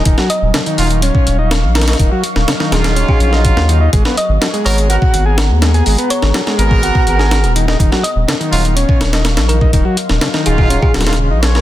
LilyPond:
<<
  \new Staff \with { instrumentName = "Ambient pad" } { \time 4/4 \key dis \minor \tempo 4 = 124 << { cis'''1~ | cis'''1 | ais''1~ | ais''2.~ ais''8 cis'''8~ |
cis'''2.~ cis'''8 bis''8~ | bis''1 | } \\ { <fis dis'' eis''>1~ | <fis dis'' eis''>1 | <b gis' fis''>1~ | <b gis' fis''>2.~ <b gis' fis''>8 <fis dis'' eis''>8~ |
<fis dis'' eis''>1~ | <fis dis'' eis''>1 | } >> }
  \new Staff \with { instrumentName = "Synth pluck" } { \time 4/4 \key dis \minor r8 dis''8. r2 r16 ais'16 r16 | r4. gis'16 gis'16 r16 gis'4 r8. | r8 dis''8. r16 cis''16 r2 r16 | r8 cis''8. r2 r8. |
r8 dis''8. r2 r16 ais'16 r16 | r4. gis'16 gis'16 r16 gis'4 r8. | }
  \new Staff \with { instrumentName = "Brass ensemble" } { \time 4/4 \key dis \minor r4. <fis cis' dis' eis'>16 r2 r16 | r4. <fis cis' dis' eis'>4 <fis cis' dis' eis'>4. | r4. <b fis' gis' ais'>16 r16 <b fis' gis' ais'>16 r4. r16 | r4. <b fis' gis' ais'>4 <b fis' gis' ais'>4 r8 |
r4. <fis cis' dis' eis'>16 r2 r16 | r4. <fis cis' dis' eis'>4 r16 <fis cis' dis' eis'>16 r8 <b fis' gis' cis''>8 | }
  \new Staff \with { instrumentName = "Transistor combo organ" } { \clef bass \time 4/4 \key dis \minor dis16 fis16 r8 cis16 dis8. cis'8. dis'16 r8 dis16 dis'16 | dis16 fis16 r8 cis16 dis8. cis'8. dis'16 r8 dis16 dis'16 | gis16 b16 r8 fis16 gis8. fis'8. gis'16 r8 gis16 gis'16 | gis16 b16 r8 fis16 gis8. fis'8. gis'16 r8 dis16 dis'16 |
dis16 fis16 r8 cis16 dis8. cis'8. dis'16 r8 dis16 dis'16 | dis16 fis16 r8 cis16 dis8. cis'16 r16 fis16 r16 cis16 dis'16 r16 ais16 | }
  \new Staff \with { instrumentName = "Sub bass" } { \clef bass \time 4/4 \key dis \minor dis,,16 r8 dis,,16 r8 dis,,8. r16 dis,,8. ais,,8. | dis,,16 r8 dis,,16 r8 dis,,8. r16 ais,,8. dis,8. | gis,,16 r8 gis,,16 r8 gis,,8. r16 gis,,8. dis,8. | gis,,16 r8 gis,,16 r8 gis,,8. r16 gis,,8. dis,,8. |
dis,,16 r8 dis,,16 r8 dis,,8. r16 dis,,8. ais,,8. | dis,,16 r8 dis,,16 r8 dis,,8. r16 dis,,8. ais,,8. | }
  \new DrumStaff \with { instrumentName = "Drums" } \drummode { \time 4/4 <hh bd>16 sn16 hh8 <hh sn>16 hh16 hho16 hh16 hh16 bd16 hh8 <hh sn>8 <hh sn>32 <hh sn>32 <hh sn>32 <hh sn>32 | <hh bd>8 hh16 sn16 <hh sn>16 sn16 <hh sn>16 <hh sn>16 hh16 bd16 hh16 sn16 <hh bd>16 sn16 hh8 | <hh bd>16 sn16 hh8 <hh sn>16 hh16 hho16 hh16 hh16 bd16 hh8 <hh sn>8 <hh sn>16 hh16 | hho16 hh16 hh16 sn16 <hh sn>16 sn16 hh16 bd16 hh16 bd16 hh16 sn16 <hh sn>16 hh16 hh16 sn16 |
<hh bd>16 sn16 hh8 <hh sn>16 hh16 hho16 hh16 hh16 bd16 <hh sn>16 <hh sn>16 <hh sn>16 <hh sn>16 hh16 bd16 | <hh bd>8 hh16 sn16 <hh sn>16 sn16 hh16 bd16 hh16 bd16 <hh sn>32 <hh sn>32 <hh sn>32 <hh sn>32 r8 <hh sn>16 sn16 | }
>>